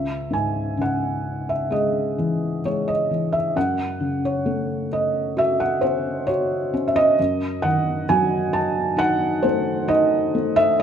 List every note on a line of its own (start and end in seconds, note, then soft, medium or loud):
0.00 3.52 C#2 medium
0.00 0.35 E5 medium
0.31 2.14 G#2 soft
0.31 0.81 G#5 medium
0.77 2.60 C#3 soft
0.81 1.53 F#5 medium
1.49 1.73 E5 medium
1.70 2.64 G#3 medium
1.70 2.67 D#5 medium
2.18 3.09 E3 soft
2.65 3.54 G#3 soft
2.65 2.89 C#5 medium
2.88 3.35 D#5 medium
3.11 3.55 E3 soft
3.32 3.57 E5 medium
3.56 7.15 F#2 medium
3.56 4.20 F#5 medium
4.00 5.78 C#3 soft
4.25 4.88 C#5 medium
4.46 6.24 A3 medium
4.93 5.39 D#5 medium
5.37 6.28 F#4 medium
5.37 5.61 E5 medium
5.60 5.83 F#5 medium
5.81 6.72 C#4 medium
5.81 6.29 C5 medium
6.27 7.17 F#4 soft
6.27 6.85 C#5 medium
6.74 7.18 C#4 medium
6.88 6.95 E5 medium
6.96 7.66 D#5 loud
7.19 10.79 F#2 medium
7.62 9.40 D#3 medium
7.62 8.05 F#5 medium
8.09 9.86 F#3 medium
8.09 8.55 G#5 medium
8.53 9.00 A5 medium
8.97 9.86 D#4 medium
8.97 9.45 F#5 loud
9.43 10.33 A3 medium
9.43 9.90 C5 medium
9.88 10.79 D#4 medium
9.88 10.55 D#5 medium
10.35 10.81 A3 medium
10.56 10.82 E5 medium